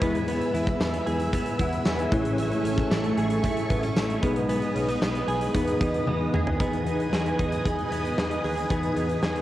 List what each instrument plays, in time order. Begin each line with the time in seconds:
Already playing: clean electric guitar E4 G#4, string machine B4 E5 G#5
0.01 picked electric bass E2, tine electric piano G#3 B3 E4 G#4 B4, clean electric guitar B3, string machine E6, kick, closed hi-hat
0.15 closed hi-hat
0.28 clean electric guitar B3, closed hi-hat
0.41 closed hi-hat
0.54 picked electric bass E2, clean electric guitar E4, closed hi-hat
0.67 kick, closed hi-hat
0.80 picked electric bass E2, clean electric guitar B3, snare, tambourine
0.94 closed hi-hat
1.07 picked electric bass E2, clean electric guitar G#4, closed hi-hat
1.20 closed hi-hat
1.33 clean electric guitar B3, kick, closed hi-hat
1.46 closed hi-hat
1.59 picked electric bass E2, clean electric guitar E4, tine electric piano F#5, kick, closed hi-hat
1.73 closed hi-hat
1.85 picked electric bass E2, clean electric guitar B3, tine electric piano B4 G#5, snare, tambourine
1.99 tine electric piano G#4 E5, closed hi-hat
2.11 picked electric bass A1, clean electric guitar E3, tine electric piano A3 C#4 E4 G#4 C#5, string machine A3 C#6, kick, closed hi-hat
2.25 closed hi-hat
2.38 clean electric guitar E3, closed hi-hat
2.52 closed hi-hat
2.64 picked electric bass A1, clean electric guitar C#4, closed hi-hat
2.78 kick, closed hi-hat
2.91 picked electric bass A1, clean electric guitar A3, snare, tambourine
3.04 closed hi-hat
3.17 picked electric bass A1, clean electric guitar G#4, closed hi-hat
3.30 closed hi-hat
3.44 clean electric guitar A3, kick, closed hi-hat
3.57 closed hi-hat
3.70 picked electric bass A1, clean electric guitar B3, kick, closed hi-hat
3.83 clean electric guitar C#4, closed hi-hat
3.96 picked electric bass A1, clean electric guitar A3, snare, tambourine
4.10 closed hi-hat
4.22 picked electric bass B1, tine electric piano G#3 B3 D#4 G#4 B4, clean electric guitar B3, string machine B4 D#5 D#6, kick, closed hi-hat
4.36 closed hi-hat
4.49 clean electric guitar B3, closed hi-hat
4.62 closed hi-hat
4.75 picked electric bass B1, clean electric guitar C#4, closed hi-hat
4.88 clean electric guitar D#4, closed hi-hat
5.01 picked electric bass B1, clean electric guitar B3, snare, tambourine
5.15 closed hi-hat
5.28 picked electric bass B1, clean electric guitar G#4, closed hi-hat
5.41 closed hi-hat
5.54 picked electric bass E2, tine electric piano E3 B3 D#4 G#4 B4, clean electric guitar B3, string machine D#5 D#6, kick, closed hi-hat
5.68 closed hi-hat
5.81 picked electric bass E2, clean electric guitar D#4, kick, closed hi-hat
5.94 closed hi-hat
6.07 picked electric bass E2, clean electric guitar B3, high tom
6.33 picked electric bass D#2, clean electric guitar G#4, mid tom
6.47 floor tom
6.59 picked electric bass E2, tine electric piano E3 D#4 G#4 B4, clean electric guitar B3 G#4, string machine B4 D#5 G#5 D#6, kick, closed hi-hat
6.73 closed hi-hat
6.86 picked electric bass E2, clean electric guitar D#4, closed hi-hat
7.00 closed hi-hat
7.12 picked electric bass E2, clean electric guitar G#4, snare
7.26 closed hi-hat
7.39 picked electric bass E2, clean electric guitar D#4, kick, closed hi-hat
7.52 closed hi-hat
7.65 picked electric bass E2, clean electric guitar G#4, kick, closed hi-hat
7.79 closed hi-hat
7.91 picked electric bass E2, clean electric guitar B3, closed hi-hat
8.05 closed hi-hat
8.18 picked electric bass E2, clean electric guitar D#4, snare
8.31 closed hi-hat
8.44 picked electric bass D#2, clean electric guitar G#4, open hi-hat
8.57 closed hi-hat
8.69 picked electric bass E2, tine electric piano E3 D#4 G#4 B4, clean electric guitar B3 G#4, kick, closed hi-hat
8.83 closed hi-hat
8.96 picked electric bass E2, clean electric guitar D#4, closed hi-hat
9.10 closed hi-hat
9.23 picked electric bass E2, clean electric guitar G#4, snare
9.36 closed hi-hat